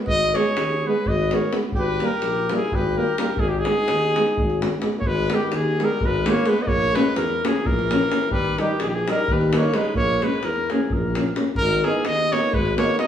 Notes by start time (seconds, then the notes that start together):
0.05 G#1 B4 D#5, davul low
0.34 G#3 B3 G#4 C#5, davul high
0.47 davul high
0.56 D#2, davul high
0.71 davul high
0.85 G#3 B3 G#4 B4
1.06 G#1 B4 D#5, davul low
1.31 G#3 B3 A#4 C#5, davul high
1.53 G#3 B3, davul high
1.63 davul high
1.72 G#1 G4, davul low
1.78 B4
2.00 G3 A#3 G4, davul high
2.06 A#4
2.12 davul high
2.22 A#1, davul high
2.36 davul high
2.49 G3 A#3 E4, davul high
2.56 G#4
2.72 G#1 G4 B4, davul low
2.97 G3 A#3 G4 A#4
3.18 G3 A#3 G4 A#4, davul high
3.28 davul high
3.37 G#1 D#4 G#4, davul low
3.47 D#4 G4
3.57 D#4 G#4
3.65 G#3 B3, davul high
3.88 D#2, davul high
4.02 davul high
4.16 G#3 B3, davul high
4.27 davul high
4.37 G#1, davul low
4.50 davul high
4.62 G#3 B3, davul high
4.72 davul high
4.82 G#3 B3, davul high
4.92 davul high
4.98 A#3 C#5, davul low
5.04 G#1 G#3 B4
5.15 davul high
5.30 D#3 G#3 B3, davul high
5.34 G4
5.52 D#2 D#3, davul high
5.56 G#4
5.80 G3 G#3 B3, davul high
5.84 A#4
6.01 G#1 G#3, davul low
6.06 B4
6.14 davul high
6.26 G#3 A#3 B3, davul high
6.30 C#5
6.37 davul high
6.46 G#3 B3 B4, davul high
6.56 davul high
6.60 B3 D#5
6.66 A#1 A#3 C#5, davul low
6.82 davul high
6.93 G#3 A#3 C#4 B4, davul high
7.15 E2 E3 A#4, davul high
7.43 E3 A#3 C#4 G#4, davul high
7.64 A#1 E3 A#4, davul low
7.79 davul high
7.90 A#3 C#4, davul high
8.12 A#3 C#4, davul high
8.21 davul high
8.30 D#2 G3 B4, davul low
8.45 davul high
8.58 D#3 G3 D#4 G4, davul high
8.80 A#1 D#3 G#4, davul high
8.85 D#3 G4
8.94 E3 G#4
9.08 G3 D#4 A#4, davul high
9.28 D#2 G3, davul low
9.32 B4
9.41 davul high
9.53 G3 A#3 D#4, davul high
9.58 C#5
9.64 davul high
9.73 G3 G#3 D#4 B4, davul high
9.85 davul high
9.94 A#1 A#3 C#5, davul low
10.09 davul high
10.20 G#3 A#3 C#4 B4, davul high
10.43 E2 E3 A#4, davul high
10.56 davul high
10.70 E3 A#3 C#4 G#4, davul high
10.90 A#1 E3 A#4, davul low
11.15 A#3 C#4, davul high
11.26 davul high
11.36 A#3 C#4, davul high
11.46 davul high
11.55 G#1 D#3 A#4, davul low
11.71 davul high
11.84 E3 B3 D#4 G#4, davul high
12.03 D#2 B3 D#5, davul high
12.32 A#3 B3 D#4 C#5, davul high
12.52 G#1 G#3 B4, davul low
12.65 davul high
12.76 A#3 B3 D#4 C#5, davul high
12.89 davul high
12.97 B3 D#4 D#5, davul high